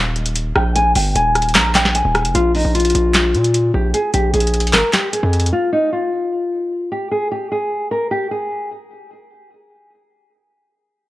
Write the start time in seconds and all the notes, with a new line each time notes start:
Already playing: D#1 F5
0.16 closed hi-hat
0.26 closed hi-hat
0.36 closed hi-hat
0.56 A#1 G5, cross-stick
0.76 G#5, closed hi-hat
0.96 G1 G5, open hi-hat
1.16 D#1 G#5, closed hi-hat
1.36 cross-stick, closed hi-hat
1.42 closed hi-hat
1.49 closed hi-hat
1.55 A#1 A#5, snare, clap, closed hi-hat
1.75 G5, snare, clap, closed hi-hat
1.85 snare
1.95 G#5, closed hi-hat
2.05 D#1
2.15 cross-stick, closed hi-hat
2.25 F1, closed hi-hat
2.35 A#1 F4, closed hi-hat
2.55 D#4, open hi-hat
2.65 A#1
2.74 F4, closed hi-hat
2.80 closed hi-hat
2.85 closed hi-hat
2.90 closed hi-hat
2.95 A#1, closed hi-hat
3.14 snare, clap, closed hi-hat
3.34 A#2, closed hi-hat
3.44 closed hi-hat
3.54 closed hi-hat
3.74 A#1 G4
3.94 G#4, closed hi-hat
4.14 A#1 G4, closed hi-hat
4.34 A#1 G#4, closed hi-hat
4.40 closed hi-hat
4.47 closed hi-hat
4.54 closed hi-hat
4.60 closed hi-hat
4.67 closed hi-hat
4.73 G#1 A#4, snare, clap, closed hi-hat
4.93 G4, snare, clap, closed hi-hat
5.13 G#4, closed hi-hat
5.23 F2
5.33 closed hi-hat
5.40 closed hi-hat
5.46 closed hi-hat
5.53 F4
5.73 D#4
5.93 F4
6.92 G4
7.11 G#4
7.32 G4
7.52 G#4
7.91 A#4
8.11 G4
8.31 G#4